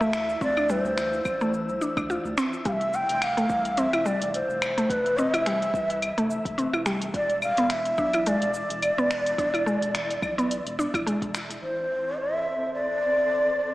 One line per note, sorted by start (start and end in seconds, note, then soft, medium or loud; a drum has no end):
0.00 0.37 D2 medium
0.00 11.64 E3 medium
0.00 0.40 A3 loud
0.00 0.42 E5 loud
0.00 11.64 E6 medium
0.00 shaker soft
0.13 finger snap medium
0.13 shaker medium
0.29 shaker soft
0.41 0.80 D2 loud
0.41 0.55 C4 medium
0.41 0.72 D5 loud
0.41 kick loud
0.41 shaker soft
0.57 0.69 D4 medium
0.57 claves medium
0.57 shaker soft
0.69 1.24 G3 medium
0.69 1.82 C5 medium
0.69 shaker medium
0.85 1.21 D2 medium
0.85 shaker soft
0.98 finger snap medium
0.98 shaker soft
1.13 shaker soft
1.25 1.70 A1 medium
1.25 kick medium
1.25 claves medium
1.25 shaker medium
1.41 1.81 A3 loud
1.41 shaker soft
1.54 shaker soft
1.69 1.79 C2 medium
1.69 shaker soft
1.81 1.96 D4 medium
1.81 shaker medium
1.97 2.19 D2 medium
1.97 2.08 D4 loud
1.97 kick loud
1.97 claves medium
1.97 shaker soft
2.10 2.25 F4 medium
2.10 shaker soft
2.25 2.35 D2 medium
2.25 shaker soft
2.38 2.46 C4 loud
2.38 finger snap medium
2.38 shaker medium
2.53 shaker soft
2.65 3.04 F1 medium
2.65 3.21 G3 loud
2.65 2.74 F5 loud
2.65 kick loud
2.65 closed hi-hat soft
2.65 shaker soft
2.73 2.97 E5 loud
2.81 closed hi-hat soft
2.81 shaker soft
2.93 3.25 G5 loud
2.93 shaker medium
3.09 3.46 F1 loud
3.09 closed hi-hat soft
3.09 shaker soft
3.22 3.81 F5 medium
3.22 finger snap medium
3.22 closed hi-hat medium
3.22 claves medium
3.22 shaker soft
3.37 3.77 A3 medium
3.37 closed hi-hat soft
3.37 shaker soft
3.49 3.88 C2 medium
3.49 kick medium
3.49 shaker medium
3.65 closed hi-hat soft
3.65 shaker soft
3.77 3.92 C4 medium
3.77 4.07 E5 loud
3.77 closed hi-hat medium
3.77 shaker soft
3.93 4.15 F1 medium
3.93 4.05 E4 loud
3.93 closed hi-hat soft
3.93 claves medium
3.93 shaker soft
4.06 4.61 G3 loud
4.06 4.34 D5 medium
4.06 shaker medium
4.21 4.43 F1 medium
4.21 closed hi-hat soft
4.21 shaker soft
4.34 4.92 C5 medium
4.34 closed hi-hat medium
4.34 shaker soft
4.49 4.86 F1 medium
4.49 shaker soft
4.62 finger snap medium
4.62 claves medium
4.62 shaker medium
4.78 5.17 A3 medium
4.78 closed hi-hat soft
4.78 shaker soft
4.90 5.28 F1 medium
4.90 5.19 B4 loud
4.90 kick loud
4.90 closed hi-hat medium
4.90 shaker soft
5.06 closed hi-hat soft
5.06 shaker soft
5.17 5.32 C4 medium
5.17 5.31 D#5 loud
5.17 shaker medium
5.31 5.70 F1 medium
5.31 5.46 E4 loud
5.31 6.86 E5 loud
5.31 closed hi-hat soft
5.31 claves medium
5.31 shaker soft
5.46 6.01 G3 loud
5.46 finger snap medium
5.46 closed hi-hat medium
5.46 shaker soft
5.62 closed hi-hat soft
5.62 shaker soft
5.74 6.12 C2 medium
5.74 kick medium
5.74 shaker medium
5.90 closed hi-hat soft
5.90 shaker soft
6.02 closed hi-hat medium
6.02 claves medium
6.02 shaker soft
6.17 6.39 F1 medium
6.17 6.57 A3 loud
6.17 closed hi-hat soft
6.17 shaker soft
6.31 shaker medium
6.45 6.67 F1 medium
6.45 kick medium
6.45 closed hi-hat soft
6.45 shaker soft
6.58 6.72 C4 loud
6.58 closed hi-hat medium
6.58 shaker soft
6.73 7.10 F1 medium
6.73 6.86 E4 loud
6.73 claves medium
6.73 shaker soft
6.86 7.14 G3 loud
6.86 finger snap medium
6.86 shaker medium
7.02 closed hi-hat soft
7.02 shaker soft
7.14 7.53 E1 medium
7.14 7.41 D5 loud
7.14 kick loud
7.14 closed hi-hat medium
7.14 shaker soft
7.30 closed hi-hat soft
7.30 shaker soft
7.42 7.73 F5 loud
7.42 claves medium
7.42 shaker medium
7.57 7.94 E1 medium
7.57 7.97 B3 loud
7.57 closed hi-hat soft
7.57 shaker soft
7.70 8.29 E5 loud
7.70 finger snap medium
7.70 closed hi-hat medium
7.70 shaker soft
7.85 closed hi-hat soft
7.85 shaker soft
7.98 8.37 B1 medium
7.98 8.12 D4 loud
7.98 kick medium
7.98 shaker medium
8.13 8.26 E4 loud
8.13 closed hi-hat soft
8.13 claves medium
8.13 shaker soft
8.26 8.81 G#3 loud
8.26 11.08 D5 loud
8.26 closed hi-hat medium
8.26 shaker soft
8.42 8.64 E1 medium
8.42 closed hi-hat soft
8.42 shaker soft
8.54 shaker medium
8.70 8.92 E1 medium
8.70 closed hi-hat soft
8.70 shaker soft
8.82 closed hi-hat medium
8.82 claves medium
8.82 shaker soft
8.97 9.34 E1 medium
8.97 9.38 B3 loud
8.97 shaker soft
9.11 finger snap medium
9.11 shaker medium
9.26 closed hi-hat soft
9.26 shaker soft
9.38 9.77 E1 loud
9.38 9.52 D4 loud
9.38 kick loud
9.38 closed hi-hat medium
9.38 shaker soft
9.54 9.66 E4 loud
9.54 closed hi-hat soft
9.54 claves medium
9.54 shaker soft
9.66 10.21 G#3 loud
9.66 shaker medium
9.82 10.19 E1 medium
9.82 closed hi-hat soft
9.82 shaker soft
9.95 finger snap medium
9.95 closed hi-hat medium
9.95 shaker soft
10.10 closed hi-hat soft
10.10 shaker soft
10.22 10.61 B1 medium
10.22 kick loud
10.22 claves medium
10.22 shaker medium
10.38 10.78 B3 loud
10.38 closed hi-hat soft
10.38 shaker soft
10.51 closed hi-hat medium
10.51 shaker soft
10.65 10.88 E1 medium
10.65 closed hi-hat soft
10.65 shaker soft
10.79 10.93 D4 medium
10.79 shaker medium
10.94 11.16 E1 medium
10.94 11.06 E4 loud
10.94 kick medium
10.94 closed hi-hat soft
10.94 claves medium
10.94 shaker soft
11.07 11.62 G#3 medium
11.07 closed hi-hat medium
11.07 shaker soft
11.22 11.59 E1 medium
11.22 kick medium
11.22 closed hi-hat soft
11.22 shaker soft
11.35 finger snap medium
11.35 shaker medium
11.50 closed hi-hat soft
11.50 shaker soft
11.62 13.74 A1 medium
11.62 13.74 C4 medium
11.62 13.74 A4 medium
11.62 12.20 C5 medium
11.62 shaker soft
11.78 shaker soft
11.91 shaker medium
12.06 shaker soft
12.18 12.73 E5 medium
12.18 shaker soft
12.35 shaker soft
12.47 shaker medium
12.63 shaker soft
12.74 13.74 D5 loud
12.74 shaker soft
12.90 shaker soft
13.03 shaker medium
13.18 shaker soft
13.31 shaker soft
13.59 shaker medium